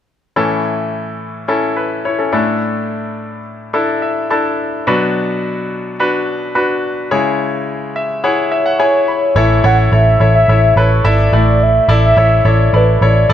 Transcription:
0.36 2.29 A2 medium
0.36 2.29 E3 medium
0.36 1.43 C#4 medium
0.36 1.43 E4 medium
0.36 1.43 A4 medium
1.48 1.77 C#4 medium
1.48 1.77 E4 medium
1.48 1.77 A4 medium
1.77 2.04 B4 soft
2.05 2.19 E4 soft
2.05 2.19 C#5 medium
2.19 2.46 C#4 soft
2.19 2.31 A4 soft
2.32 4.54 A2 soft
2.32 4.54 A3 soft
2.32 3.39 D4 medium
2.32 3.39 E4 medium
2.32 3.39 A4 medium
3.73 4.27 D4 medium
3.73 4.27 E4 medium
3.73 4.27 A4 medium
4.02 4.28 E5 medium
4.30 4.84 D4 medium
4.30 4.84 E4 medium
4.30 4.84 A4 medium
4.30 4.83 A5 medium
4.87 7.08 B2 medium
4.87 7.08 F#3 medium
4.87 5.93 D4 medium
4.87 5.93 F#4 medium
4.87 5.93 B4 medium
5.99 6.52 D4 medium
5.99 6.53 F#4 medium
5.99 6.53 B4 medium
6.55 7.08 D4 medium
6.55 7.09 F#4 medium
6.55 7.08 B4 medium
7.11 9.32 C#3 medium
7.11 9.33 G#3 medium
7.11 8.18 E4 medium
7.11 8.18 G#4 medium
7.11 8.18 C#5 medium
7.96 8.22 E5 medium
8.24 8.77 E4 medium
8.24 8.77 G#4 medium
8.24 8.77 C#5 medium
8.24 8.50 F#5 medium
8.52 9.38 C#5 medium
8.52 8.65 E5 medium
8.66 8.79 F#5 medium
8.79 9.33 E4 medium
8.79 9.33 G#4 soft
8.79 9.33 C#5 medium
8.79 9.06 G#5 medium
9.08 9.34 B5 medium
9.36 9.59 A1 medium
9.36 10.17 A2 soft
9.36 10.17 E3 medium
9.36 9.62 E4 medium
9.36 9.62 A4 medium
9.36 9.62 C#5 medium
9.36 9.65 E5 medium
9.64 9.87 A1 medium
9.64 9.90 E4 medium
9.64 9.91 A4 medium
9.64 9.91 C#5 medium
9.64 9.78 F#5 medium
9.92 10.15 A1 medium
9.92 10.19 E4 medium
9.92 10.19 A4 medium
9.92 10.19 C#5 medium
9.92 10.32 E5 medium
10.20 10.44 A1 medium
10.20 10.47 E4 medium
10.20 10.47 A4 medium
10.20 10.47 C#5 medium
10.35 10.74 E5 medium
10.48 10.72 A1 medium
10.48 10.75 E4 medium
10.48 10.76 A4 soft
10.48 10.76 C#5 medium
10.76 10.99 A1 medium
10.76 11.03 E4 medium
10.76 11.03 A4 medium
10.76 11.04 B4 medium
10.76 11.07 C#5 medium
11.04 11.28 G#1 medium
11.04 11.31 E4 medium
11.04 11.31 A4 medium
11.04 11.64 D5 medium
11.04 11.31 E5 medium
11.32 11.79 A1 medium
11.32 12.13 A2 soft
11.32 12.14 A3 soft
11.32 11.86 E4 medium
11.32 11.86 A4 soft
11.32 11.86 D5 medium
11.63 12.04 E5 medium
11.88 12.12 A1 medium
11.88 12.15 E4 medium
11.88 12.16 A4 medium
11.88 12.16 D5 medium
12.06 12.50 E5 medium
12.17 12.40 A1 medium
12.17 12.44 E4 medium
12.17 12.43 A4 medium
12.17 12.44 C#5 medium
12.45 12.68 A1 medium
12.45 12.72 E4 medium
12.45 12.72 A4 medium
12.45 12.72 C#5 medium
12.45 12.77 D5 medium
12.73 12.96 A1 medium
12.73 13.00 E4 medium
12.73 13.00 A4 medium
12.73 13.03 B4 medium
12.73 13.00 D5 medium
13.01 13.25 A1 medium
13.01 13.28 E4 medium
13.01 13.28 A4 medium
13.01 13.29 C#5 medium
13.01 13.33 D5 loud
13.29 13.33 A1 medium
13.29 13.33 E4 medium
13.29 13.33 A4 medium
13.29 13.33 D5 medium

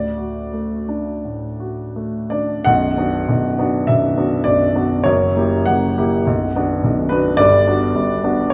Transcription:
0.00 1.20 D2 soft
0.00 2.29 D5 medium
0.18 0.74 F#4 soft
0.53 1.10 A3 soft
0.89 1.45 D4 soft
1.25 1.81 A2 soft
1.60 2.17 F#4 soft
1.96 2.53 A3 soft
2.30 2.66 D4 soft
2.30 2.65 D5 medium
2.65 2.97 B0 medium
2.65 2.97 B1 medium
2.65 3.87 F#5 loud
2.98 3.26 B3 soft
2.98 3.25 D4 soft
2.98 3.26 F#4 soft
3.28 3.58 B0 soft
3.28 3.58 B1 medium
3.59 3.85 B3 soft
3.59 3.85 D4 soft
3.59 3.86 F#4 soft
3.87 4.16 B0 soft
3.87 4.16 B1 medium
3.87 4.45 E5 medium
4.17 4.43 B3 soft
4.17 4.43 D4 soft
4.17 4.43 F#4 soft
4.44 4.75 B0 medium
4.44 4.75 B1 medium
4.44 5.05 D5 medium
4.75 5.02 B3 soft
4.75 5.03 D4 soft
4.75 5.03 F#4 medium
5.04 5.36 F#1 medium
5.04 5.36 F#2 medium
5.04 5.67 C#5 medium
5.36 5.65 A#3 soft
5.36 5.65 E4 soft
5.36 5.65 G4 soft
5.66 5.96 F#1 medium
5.66 5.97 F#2 medium
5.66 6.82 F#5 medium
5.97 6.24 A#3 soft
5.97 6.24 E4 medium
5.97 6.24 G4 medium
6.26 6.54 B0 medium
6.26 6.55 B1 medium
6.56 6.81 B3 medium
6.56 6.81 D4 soft
6.56 6.81 F#4 soft
6.84 7.11 B0 medium
6.84 7.11 B1 medium
7.09 7.37 B3 soft
7.09 7.37 D4 soft
7.09 7.37 F#4 medium
7.09 7.38 B4 medium
7.37 7.66 G1 medium
7.37 7.66 G2 medium
7.37 8.51 D5 loud
7.67 7.93 B3 soft
7.67 7.93 D4 soft
7.67 7.93 F#4 medium
7.95 8.23 G1 medium
7.95 8.23 G2 medium
8.24 8.50 B3 soft
8.24 8.50 D4 medium
8.24 8.50 F#4 medium
8.50 8.54 C#5 medium

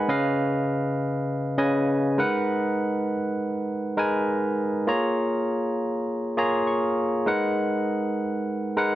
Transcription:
0.00 0.11 G#3 medium
0.00 0.11 D#4 medium
0.00 0.11 A#4 medium
0.00 0.09 B4 medium
0.00 0.09 D#5 medium
0.00 0.11 F#5 loud
0.00 0.24 G#5 medium
0.00 0.11 B5 medium
0.00 0.11 D#6 medium
0.08 1.04 C#3 loud
0.08 1.04 C#4 medium
0.08 1.05 B4 medium
0.08 1.05 D#5 medium
0.08 1.05 F5 loud
1.57 2.18 C#3 loud
1.57 2.18 C#4 medium
1.57 2.18 B4 medium
1.57 2.19 D#5 medium
1.57 2.19 G#5 loud
2.18 3.15 G#3 medium
2.18 3.15 D#4 medium
2.18 3.15 A#4 medium
2.18 3.15 B4 medium
2.18 3.16 F#5 loud
3.97 4.70 G#3 medium
3.97 4.70 D#4 medium
3.97 4.70 A#4 medium
3.97 4.70 B4 medium
3.97 4.71 G#5 loud
4.87 5.83 A#3 medium
4.87 5.83 F4 medium
4.87 5.83 G#4 medium
4.87 5.83 C#5 medium
4.87 5.84 A#5 loud
6.37 7.09 A#3 medium
6.37 7.10 F4 medium
6.37 7.10 G#4 medium
6.37 7.10 C#5 medium
6.37 7.10 A#5 loud
6.67 7.23 C#6 medium
7.26 8.22 G#3 loud
7.26 8.22 D#4 medium
7.26 8.23 A#4 medium
7.26 8.23 B4 medium
7.26 8.23 F#5 loud
8.77 8.95 G#3 medium
8.77 8.95 D#4 medium
8.77 8.95 A#4 medium
8.77 8.95 B4 medium
8.77 8.95 F#5 loud

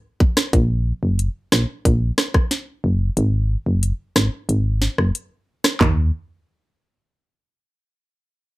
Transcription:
0.20 kick loud
0.37 cross-stick medium
0.37 snare loud
0.53 0.93 A#1 loud
0.53 kick loud
0.53 closed hi-hat medium
1.03 1.29 F#1 medium
1.19 closed hi-hat medium
1.52 1.65 A#1 medium
1.52 cross-stick loud
1.52 snare loud
1.85 2.12 A#1 loud
1.85 kick medium
1.85 closed hi-hat medium
2.18 cross-stick medium
2.18 snare loud
2.34 kick medium
2.34 cross-stick medium
2.51 snare medium
2.51 closed hi-hat medium
2.84 3.10 F#1 loud
3.17 3.57 G#1 loud
3.17 closed hi-hat medium
3.66 3.93 F#1 medium
3.83 closed hi-hat medium
4.16 4.29 G#1 loud
4.16 cross-stick loud
4.16 snare loud
4.49 4.89 G#1 loud
4.49 closed hi-hat medium
4.82 snare medium
4.98 5.12 F#1 medium
4.98 cross-stick medium
5.15 closed hi-hat medium
5.64 cross-stick medium
5.64 snare loud
5.81 6.11 D#2 loud
5.81 kick loud
5.81 clap medium
5.81 floor tom loud

